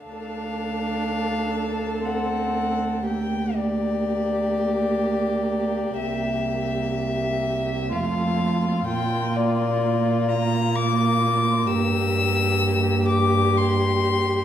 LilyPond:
<<
  \new Staff \with { instrumentName = "Violin" } { \time 3/4 \key d \minor \tempo 4 = 62 f''2 fis''4 | g''8 d''2~ d''8 | e''2 f''4 | g''8 d''4 bes''8 d'''4 |
e'''4. d'''8 c'''4 | }
  \new Staff \with { instrumentName = "Violin" } { \time 3/4 \key d \minor a'2. | g'2.~ | g'2 f'4~ | f'2. |
g'2. | }
  \new Staff \with { instrumentName = "Viola" } { \time 3/4 \key d \minor d'2 c'4 | bes2.~ | bes2 a4 | bes2.~ |
bes2. | }
  \new Staff \with { instrumentName = "Cello" } { \clef bass \time 3/4 \key d \minor d,2.~ | d,2. | c,2 f,4 | bes,2. |
g,2. | }
>>